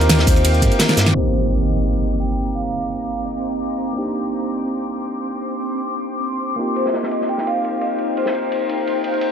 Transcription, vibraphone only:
Already playing: C5
1.15 C5
2.20 G5
2.55 F5
3.25 D#5
6.77 C5
6.94 D#5
7.29 G5
7.47 F5
7.82 D#5
8.17 C5

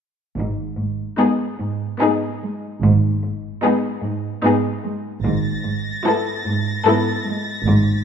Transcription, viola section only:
1.19 B3 D#4
2.00 B3 D#4
3.63 B3 D#4
4.43 B3 D#4
6.05 B3 E4
6.87 B3 E4

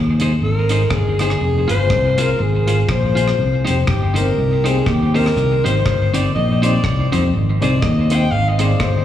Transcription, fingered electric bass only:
Already playing: D#2
0.42 G#1
0.91 G1
1.41 F1
1.70 G1
1.90 C2
2.40 G#1
2.89 A#1
3.39 C2
3.68 F1
3.88 G1
4.38 C2
4.87 D#2
5.36 C2
5.65 G#1
5.86 G1
6.36 A#1
6.84 C2
7.13 F2
7.33 G#1
7.61 C2
7.83 D#2
8.31 G#1
8.81 G1

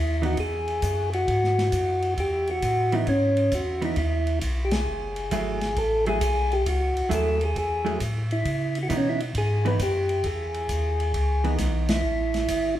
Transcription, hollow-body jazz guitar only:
0.22 E3 B3 D#4
2.92 E3 B3 D#4
3.82 E3 B3 D#4
5.32 F#3 A3 E4 G#4
6.07 F#3 A3 E4 G#4
7.09 F#3 A3 E4 G#4
7.85 F#3 A3 E4 G#4
8.90 E3 B3 D#4
9.65 E3 B3 D#4
11.44 E3 B3 D#4

